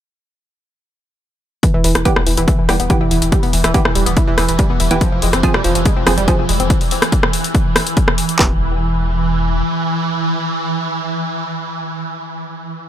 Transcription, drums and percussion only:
1.63 kick loud
1.63 closed hi-hat medium
1.84 open hi-hat loud
1.95 cross-stick medium
1.95 closed hi-hat medium
2.05 kick loud
2.05 closed hi-hat medium
2.16 cross-stick medium
2.27 open hi-hat loud
2.37 closed hi-hat medium
2.48 kick loud
2.48 closed hi-hat medium
2.69 cross-stick medium
2.69 open hi-hat loud
2.80 closed hi-hat medium
2.90 kick loud
2.90 closed hi-hat medium
3.11 open hi-hat loud
3.22 closed hi-hat medium
3.32 kick loud
3.32 closed hi-hat medium
3.43 open hi-hat medium
3.53 open hi-hat loud
3.64 cross-stick medium
3.64 closed hi-hat medium
3.74 kick loud
3.74 closed hi-hat medium
3.85 cross-stick medium
3.95 open hi-hat loud
4.06 closed hi-hat medium
4.17 kick loud
4.17 closed hi-hat medium
4.38 cross-stick medium
4.38 open hi-hat loud
4.49 closed hi-hat medium
4.59 kick loud
4.59 closed hi-hat medium
4.80 open hi-hat loud
4.91 closed hi-hat medium
5.01 kick loud
5.01 closed hi-hat medium
5.22 open hi-hat loud
5.33 cross-stick medium
5.33 closed hi-hat medium
5.43 kick loud
5.43 closed hi-hat medium
5.54 cross-stick medium
5.64 open hi-hat loud
5.75 closed hi-hat medium
5.85 kick loud
5.85 closed hi-hat medium
6.07 cross-stick medium
6.07 open hi-hat loud
6.18 closed hi-hat medium
6.28 kick loud
6.28 closed hi-hat medium
6.49 open hi-hat loud
6.60 closed hi-hat medium
6.70 kick loud
6.70 closed hi-hat medium
6.81 open hi-hat medium
6.91 open hi-hat loud
7.02 cross-stick medium
7.02 closed hi-hat medium
7.12 kick loud
7.12 closed hi-hat medium
7.23 cross-stick medium
7.33 open hi-hat loud
7.44 closed hi-hat medium
7.55 kick loud
7.55 closed hi-hat medium
7.76 cross-stick medium
7.76 open hi-hat loud
7.87 closed hi-hat medium
7.97 kick loud
7.97 closed hi-hat medium
8.08 cross-stick medium
8.18 open hi-hat loud
8.29 closed hi-hat medium
8.39 kick loud
8.39 clap medium

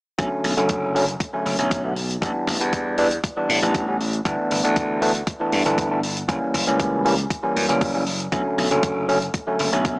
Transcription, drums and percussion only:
0.19 kick loud
0.19 closed hi-hat medium
0.44 open hi-hat loud
0.57 closed hi-hat medium
0.69 kick loud
0.69 closed hi-hat medium
0.96 open hi-hat loud
1.08 closed hi-hat medium
1.20 kick loud
1.20 closed hi-hat medium
1.46 open hi-hat loud
1.59 closed hi-hat medium
1.71 kick loud
1.71 closed hi-hat medium
1.96 open hi-hat medium
2.11 closed hi-hat medium
2.22 kick loud
2.22 closed hi-hat medium
2.47 kick medium
2.47 open hi-hat loud
2.61 closed hi-hat medium
2.73 kick loud
2.73 closed hi-hat medium
2.98 open hi-hat medium
3.11 closed hi-hat medium
3.24 kick loud
3.24 closed hi-hat medium
3.50 open hi-hat loud
3.63 closed hi-hat medium
3.74 kick loud
3.74 closed hi-hat medium
4.00 open hi-hat medium
4.13 closed hi-hat medium
4.25 kick loud
4.25 closed hi-hat medium
4.51 open hi-hat loud
4.65 closed hi-hat medium
4.76 kick loud
4.76 closed hi-hat medium
5.02 open hi-hat loud
5.15 closed hi-hat medium
5.27 kick loud
5.27 closed hi-hat medium
5.52 open hi-hat loud
5.66 closed hi-hat medium
5.78 kick loud
5.78 closed hi-hat medium
6.03 open hi-hat medium
6.17 closed hi-hat medium
6.29 kick loud
6.29 closed hi-hat medium
6.54 kick medium
6.54 open hi-hat loud
6.67 closed hi-hat medium
6.80 kick loud
6.80 closed hi-hat medium
7.05 open hi-hat loud
7.18 closed hi-hat medium
7.30 kick loud
7.30 closed hi-hat medium
7.56 open hi-hat loud
7.69 closed hi-hat medium
7.81 kick loud
7.81 open hi-hat medium
8.06 open hi-hat medium
8.20 closed hi-hat medium
8.32 kick loud
8.32 closed hi-hat medium
8.58 open hi-hat loud
8.71 closed hi-hat medium
8.83 kick loud
8.83 closed hi-hat medium
9.09 open hi-hat medium
9.22 closed hi-hat medium
9.34 kick loud
9.34 closed hi-hat medium
9.59 open hi-hat medium
9.73 closed hi-hat medium
9.85 kick loud
9.85 closed hi-hat medium

